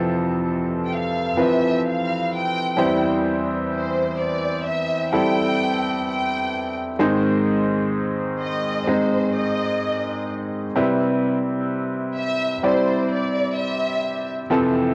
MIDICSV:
0, 0, Header, 1, 3, 480
1, 0, Start_track
1, 0, Key_signature, 0, "major"
1, 0, Tempo, 937500
1, 1667, Time_signature, 4, 2, 24, 8
1, 7650, End_track
2, 0, Start_track
2, 0, Title_t, "Violin section"
2, 0, Program_c, 0, 48
2, 438, Note_on_c, 0, 79, 43
2, 470, Note_off_c, 0, 79, 0
2, 484, Note_on_c, 0, 77, 60
2, 715, Note_off_c, 0, 77, 0
2, 720, Note_on_c, 0, 76, 66
2, 953, Note_off_c, 0, 76, 0
2, 961, Note_on_c, 0, 77, 67
2, 1177, Note_off_c, 0, 77, 0
2, 1198, Note_on_c, 0, 79, 77
2, 1552, Note_off_c, 0, 79, 0
2, 1914, Note_on_c, 0, 72, 57
2, 2134, Note_off_c, 0, 72, 0
2, 2145, Note_on_c, 0, 74, 66
2, 2386, Note_off_c, 0, 74, 0
2, 2386, Note_on_c, 0, 76, 69
2, 2610, Note_off_c, 0, 76, 0
2, 2623, Note_on_c, 0, 79, 86
2, 3084, Note_off_c, 0, 79, 0
2, 3111, Note_on_c, 0, 79, 75
2, 3448, Note_off_c, 0, 79, 0
2, 4309, Note_on_c, 0, 75, 73
2, 4531, Note_off_c, 0, 75, 0
2, 4540, Note_on_c, 0, 72, 62
2, 4782, Note_on_c, 0, 75, 66
2, 4783, Note_off_c, 0, 72, 0
2, 5244, Note_off_c, 0, 75, 0
2, 6232, Note_on_c, 0, 76, 79
2, 6453, Note_off_c, 0, 76, 0
2, 6479, Note_on_c, 0, 72, 65
2, 6696, Note_off_c, 0, 72, 0
2, 6723, Note_on_c, 0, 74, 66
2, 6938, Note_off_c, 0, 74, 0
2, 6961, Note_on_c, 0, 76, 65
2, 7314, Note_off_c, 0, 76, 0
2, 7650, End_track
3, 0, Start_track
3, 0, Title_t, "Grand piano"
3, 0, Program_c, 1, 0
3, 0, Control_c, 1, 64, 127
3, 0, Note_on_c, 1, 41, 52
3, 0, Note_on_c, 1, 48, 48
3, 0, Note_on_c, 1, 52, 54
3, 0, Note_on_c, 1, 53, 62
3, 0, Note_on_c, 1, 60, 53
3, 0, Note_on_c, 1, 69, 73
3, 657, Note_off_c, 1, 53, 0
3, 657, Note_off_c, 1, 60, 0
3, 658, Note_off_c, 1, 52, 0
3, 659, Note_off_c, 1, 69, 0
3, 701, Note_on_c, 1, 53, 50
3, 704, Note_on_c, 1, 60, 46
3, 705, Note_on_c, 1, 52, 41
3, 707, Note_on_c, 1, 71, 51
3, 1405, Note_off_c, 1, 41, 0
3, 1405, Note_off_c, 1, 48, 0
3, 1413, Note_off_c, 1, 60, 0
3, 1414, Note_off_c, 1, 52, 0
3, 1416, Note_on_c, 1, 55, 63
3, 1420, Note_on_c, 1, 60, 50
3, 1422, Note_on_c, 1, 52, 48
3, 1423, Note_on_c, 1, 40, 48
3, 1423, Note_on_c, 1, 64, 52
3, 1424, Note_off_c, 1, 53, 0
3, 1425, Note_on_c, 1, 72, 61
3, 1427, Note_off_c, 1, 71, 0
3, 1434, Control_c, 1, 64, 0
3, 1526, Control_c, 1, 64, 127
3, 2333, Note_off_c, 1, 55, 0
3, 2335, Note_off_c, 1, 60, 0
3, 2337, Note_off_c, 1, 64, 0
3, 2338, Note_off_c, 1, 72, 0
3, 2624, Note_on_c, 1, 55, 49
3, 2625, Note_on_c, 1, 60, 45
3, 2629, Note_on_c, 1, 64, 48
3, 2629, Note_on_c, 1, 69, 52
3, 3324, Note_off_c, 1, 40, 0
3, 3324, Note_off_c, 1, 52, 0
3, 3537, Note_off_c, 1, 55, 0
3, 3538, Note_off_c, 1, 60, 0
3, 3540, Note_off_c, 1, 64, 0
3, 3540, Note_off_c, 1, 69, 0
3, 3579, Note_on_c, 1, 56, 60
3, 3582, Note_on_c, 1, 60, 56
3, 3583, Note_on_c, 1, 44, 52
3, 3584, Note_on_c, 1, 51, 50
3, 3585, Note_on_c, 1, 63, 59
3, 3587, Note_on_c, 1, 72, 67
3, 3592, Control_c, 1, 64, 0
3, 3671, Control_c, 1, 64, 127
3, 4495, Note_off_c, 1, 56, 0
3, 4496, Note_off_c, 1, 60, 0
3, 4498, Note_off_c, 1, 63, 0
3, 4499, Note_off_c, 1, 72, 0
3, 4543, Note_on_c, 1, 56, 45
3, 4543, Note_on_c, 1, 60, 42
3, 4548, Note_on_c, 1, 63, 45
3, 4549, Note_on_c, 1, 75, 48
3, 5457, Note_off_c, 1, 56, 0
3, 5457, Note_off_c, 1, 60, 0
3, 5459, Note_off_c, 1, 63, 0
3, 5459, Note_off_c, 1, 75, 0
3, 5484, Note_off_c, 1, 44, 0
3, 5485, Note_off_c, 1, 51, 0
3, 5508, Note_on_c, 1, 55, 58
3, 5508, Note_on_c, 1, 60, 49
3, 5510, Note_on_c, 1, 48, 54
3, 5511, Note_on_c, 1, 64, 50
3, 5513, Control_c, 1, 64, 0
3, 5514, Note_on_c, 1, 71, 60
3, 5613, Control_c, 1, 64, 127
3, 6419, Note_off_c, 1, 55, 0
3, 6419, Note_off_c, 1, 60, 0
3, 6421, Note_off_c, 1, 64, 0
3, 6422, Note_off_c, 1, 71, 0
3, 6467, Note_on_c, 1, 55, 49
3, 6471, Note_on_c, 1, 60, 46
3, 6473, Note_on_c, 1, 74, 55
3, 6474, Note_on_c, 1, 64, 46
3, 7379, Note_off_c, 1, 55, 0
3, 7381, Note_off_c, 1, 60, 0
3, 7381, Note_off_c, 1, 74, 0
3, 7382, Note_off_c, 1, 64, 0
3, 7408, Note_off_c, 1, 48, 0
3, 7423, Note_on_c, 1, 53, 58
3, 7427, Note_on_c, 1, 48, 55
3, 7427, Note_on_c, 1, 60, 51
3, 7429, Note_on_c, 1, 41, 54
3, 7429, Note_on_c, 1, 52, 58
3, 7432, Control_c, 1, 64, 0
3, 7434, Note_on_c, 1, 69, 67
3, 7516, Control_c, 1, 64, 127
3, 7650, Note_off_c, 1, 41, 0
3, 7650, Note_off_c, 1, 48, 0
3, 7650, Note_off_c, 1, 52, 0
3, 7650, Note_off_c, 1, 53, 0
3, 7650, Note_off_c, 1, 60, 0
3, 7650, Note_off_c, 1, 69, 0
3, 7650, End_track
0, 0, End_of_file